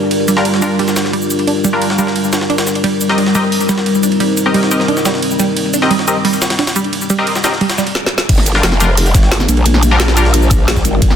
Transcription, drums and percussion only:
0.11 ride medium
0.28 ride medium
0.28 cabasa medium
0.37 snare soft
0.45 ride medium
0.54 snare soft
0.62 ride medium
0.62 cabasa medium
0.79 ride medium
0.88 snare soft
0.88 cabasa soft
0.96 snare loud
0.96 ride medium
0.96 cabasa medium
1.05 snare soft
1.13 ride medium
1.22 cabasa soft
1.30 ride medium
1.30 cabasa medium
1.39 ride soft
1.47 ride medium
1.64 ride medium
1.64 cabasa medium
1.82 ride medium
1.90 snare medium
1.99 ride medium
1.99 cabasa medium
2.07 snare soft
2.16 ride medium
2.24 cabasa soft
2.33 snare loud
2.33 ride medium
2.33 cabasa medium
2.41 snare soft
2.50 ride medium
2.58 snare loud
2.58 ride medium
2.58 cabasa soft
2.67 snare soft
2.67 cabasa medium
2.75 ride medium
2.84 ride medium
3.01 ride medium
3.01 cabasa medium
3.09 snare soft
3.18 ride medium
3.26 snare soft
3.35 ride medium
3.35 cabasa medium
3.52 open hi-hat medium
3.60 ride soft
3.60 cabasa soft
3.69 snare soft
3.69 ride medium
3.69 cabasa medium
3.78 snare medium
3.86 ride medium
3.95 cabasa soft
4.03 ride medium
4.03 cabasa medium
4.12 ride soft
4.20 ride medium
4.37 ride medium
4.37 cabasa medium
4.54 ride medium
4.63 snare medium
4.71 ride medium
4.71 cabasa medium
4.80 snare soft
4.88 ride medium
4.97 snare soft
4.97 cabasa soft
5.05 snare loud
5.05 ride medium
5.05 cabasa medium
5.14 snare soft
5.22 ride medium
5.31 cabasa soft
5.39 ride medium
5.39 cabasa medium
5.57 ride medium
5.74 ride medium
5.74 cabasa medium
5.82 snare soft
5.91 ride medium
5.99 snare soft
6.08 ride medium
6.08 cabasa medium
6.25 open hi-hat medium
6.33 ride soft
6.33 cabasa soft
6.42 snare loud
6.42 ride medium
6.42 cabasa medium
6.50 snare loud
6.50 ride medium
6.59 snare loud
6.59 ride medium
6.67 snare loud
6.67 ride medium
6.67 cabasa soft
6.76 ride medium
6.76 cabasa medium
6.84 ride soft
6.93 ride medium
7.01 cabasa soft
7.10 ride medium
7.10 cabasa medium
7.27 ride medium
7.35 snare medium
7.35 cabasa soft
7.44 snare loud
7.44 ride medium
7.44 cabasa medium
7.52 snare soft
7.61 ride medium
7.70 snare loud
7.70 ride medium
7.70 cabasa soft
7.78 snare soft
7.78 cabasa medium
7.87 ride medium
7.95 snare medium
8.06 snare medium
8.18 snare loud
8.29 kick loud
8.29 closed hi-hat loud
8.29 ride medium
8.29 crash loud
8.38 snare medium
8.46 closed hi-hat medium
8.46 ride medium
8.46 cabasa medium
8.55 snare soft
8.63 snare loud
8.63 closed hi-hat loud
8.63 ride medium
8.72 snare soft
8.80 closed hi-hat medium
8.80 ride medium
8.80 cabasa medium
8.97 closed hi-hat loud
8.97 open hi-hat medium
9.06 ride soft
9.06 cabasa soft
9.14 kick loud
9.14 snare soft
9.14 closed hi-hat medium
9.14 ride medium
9.14 cabasa medium
9.23 snare medium
9.31 snare loud
9.31 closed hi-hat loud
9.31 ride medium
9.40 snare medium
9.40 cabasa soft
9.48 closed hi-hat medium
9.48 ride medium
9.48 cabasa medium
9.57 ride soft
9.66 closed hi-hat medium
9.66 ride medium
9.74 snare soft
9.83 closed hi-hat medium
9.83 ride medium
9.83 cabasa medium
10.00 snare loud
10.00 closed hi-hat medium
10.00 ride medium
10.08 snare medium
10.08 snare soft
10.17 closed hi-hat medium
10.17 ride medium
10.17 cabasa medium
10.25 snare soft
10.34 closed hi-hat loud
10.34 ride medium
10.42 cabasa soft
10.51 kick loud
10.51 closed hi-hat medium
10.51 ride medium
10.51 cabasa medium
10.68 snare loud
10.68 closed hi-hat medium
10.68 ride medium
10.76 kick medium
10.76 snare soft
10.76 cabasa soft
10.85 closed hi-hat medium
10.85 ride medium
10.85 cabasa medium
11.02 kick loud
11.02 closed hi-hat medium
11.02 ride medium
11.11 snare soft

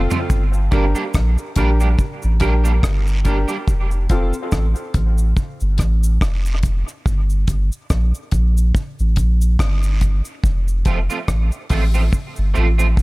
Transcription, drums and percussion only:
0.11 floor tom medium
0.11 cabasa medium
0.30 kick loud
0.30 cabasa medium
0.53 cabasa soft
0.72 kick medium
0.72 closed hi-hat medium
0.72 cabasa soft
0.95 cabasa medium
1.14 kick loud
1.14 cross-stick medium
1.14 cabasa medium
1.38 cabasa soft
1.56 kick medium
1.56 closed hi-hat medium
1.56 cabasa soft
1.80 cabasa medium
1.99 kick loud
1.99 cabasa medium
2.22 cabasa soft
2.40 kick medium
2.40 closed hi-hat medium
2.40 cabasa soft
2.65 cabasa medium
2.83 kick loud
2.83 cross-stick loud
2.83 cabasa medium
2.83 long guiro medium
3.07 cabasa medium
3.25 kick medium
3.25 closed hi-hat medium
3.25 cabasa soft
3.48 cabasa medium
3.68 kick loud
3.68 cabasa medium
3.91 cabasa soft
4.09 kick loud
4.09 closed hi-hat medium
4.09 cabasa soft
4.33 cabasa medium
4.52 kick loud
4.52 cross-stick loud
4.52 cabasa medium
4.75 cabasa medium
4.94 kick medium
4.94 closed hi-hat medium
4.94 cabasa soft
5.18 cabasa medium
5.37 kick loud
5.37 cabasa medium
5.60 cabasa soft
5.78 kick medium
5.78 cross-stick medium
5.78 closed hi-hat medium
5.78 cabasa soft
6.04 cabasa medium
6.21 kick loud
6.21 cross-stick loud
6.21 cabasa medium
6.21 long guiro medium
6.46 cabasa medium
6.63 kick medium
6.63 closed hi-hat medium
6.63 cabasa soft
6.88 cabasa medium
7.06 kick medium
7.06 cabasa medium
7.30 cabasa soft
7.47 kick medium
7.47 closed hi-hat medium
7.47 cabasa medium
7.72 cabasa medium
7.90 kick loud
7.90 cross-stick medium
7.90 cabasa medium
8.15 cabasa medium
8.31 kick medium
8.31 closed hi-hat medium
8.31 cabasa soft
8.57 cabasa medium
8.75 kick loud
8.75 cabasa medium
8.99 cabasa soft
9.16 kick medium
9.16 closed hi-hat medium
9.16 cabasa soft
9.41 cabasa medium
9.59 kick loud
9.59 cross-stick loud
9.59 cabasa medium
9.59 long guiro medium
9.83 cabasa medium
10.01 kick medium
10.01 closed hi-hat medium
10.01 cabasa soft
10.25 cabasa medium
10.44 kick loud
10.44 cabasa medium
10.68 cabasa soft
10.85 kick loud
10.85 closed hi-hat medium
10.85 cabasa soft
11.10 cabasa medium
11.28 kick medium
11.28 cross-stick loud
11.28 cabasa medium
11.52 cabasa soft
11.70 kick medium
11.70 open hi-hat medium
11.70 cabasa soft
11.94 cabasa medium
12.13 kick loud
12.13 cabasa medium
12.36 cabasa soft
12.55 cabasa soft
12.79 cabasa medium
12.97 kick loud
12.97 cabasa medium
12.97 long guiro medium

